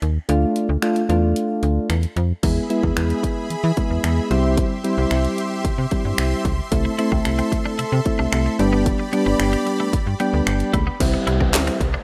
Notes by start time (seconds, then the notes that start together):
0.02 D#2, closed hi-hat
0.29 D2 A3 D4 F4, closed hi-hat
0.56 closed hi-hat
0.69 D2
0.82 A3 D4 F4, finger snap, closed hi-hat
0.96 closed hi-hat
1.09 E2 A3 D4 F4, closed hi-hat
1.36 closed hi-hat
1.63 D2, closed hi-hat
1.90 E2, finger snap, closed hi-hat
2.03 closed hi-hat
2.16 F2, closed hi-hat
2.43 E2 G#3 B3 E4 G#4 E5 B5, kick, closed hi-hat, crash
2.70 G#3 B3 E4, closed hi-hat
2.83 E2, kick
2.97 E2, finger snap, closed hi-hat
3.10 closed hi-hat
3.23 kick, closed hi-hat
3.50 E3, closed hi-hat
3.64 E3
3.77 G#3 B3 E4, kick, closed hi-hat
3.90 E2
4.04 E2, finger snap, closed hi-hat
4.30 C2 G3 C4 E4 G4 C6, closed hi-hat
4.57 kick, closed hi-hat
4.84 G3 C4 E4, closed hi-hat
4.98 C2
5.11 C2, finger snap, closed hi-hat
5.25 closed hi-hat
5.38 closed hi-hat
5.65 C3, kick, closed hi-hat
5.78 C3
5.91 G3 C4 E4, kick, closed hi-hat
6.05 G2
6.18 C2, finger snap, closed hi-hat
6.45 C#2, kick, closed hi-hat
6.72 C2 A3 C4 E4 A4, kick, closed hi-hat
6.85 muted clean electric guitar stroke
6.98 A3 C4 E4, closed hi-hat
7.12 C2 C4, kick
7.25 C2, finger snap, closed hi-hat
7.39 C4, closed hi-hat
7.52 muted clean electric guitar stroke, kick, closed hi-hat
7.66 D4
7.79 C3 E4, closed hi-hat
7.92 C3, muted clean electric guitar stroke
8.05 A3 C4 E4, kick, closed hi-hat
8.19 C2 D4
8.33 C2 C4, finger snap, closed hi-hat
8.46 muted clean electric guitar stroke
8.59 G1 G3 B3 D4 G4 D5 B5, closed hi-hat
8.73 B3
8.86 kick, closed hi-hat
9.00 muted clean electric guitar stroke
9.13 G3 B3 D4, closed hi-hat
9.26 G1 G3
9.40 G1, finger snap, closed hi-hat
9.53 G3, closed hi-hat
9.66 muted clean electric guitar stroke, closed hi-hat
9.80 A3
9.93 G2, kick, closed hi-hat
10.07 G2
10.20 G3 B3 D4 G5, closed hi-hat
10.33 D2
10.47 G1 G5, finger snap, muted clean electric guitar stroke, closed hi-hat
10.60 closed hi-hat
10.73 C#2 A3 B5, kick, closed hi-hat
10.87 B3
11.00 C2 G3 C4 E4, kick, closed hi-hat, crash, downlifter
11.14 muted clean electric guitar stroke
11.27 C2 E4, closed hi-hat
11.41 C4, kick
11.54 D2, snare, clap, closed hi-hat
11.67 C4, closed hi-hat
11.81 C2, muted clean electric guitar stroke, kick, closed hi-hat
11.94 D4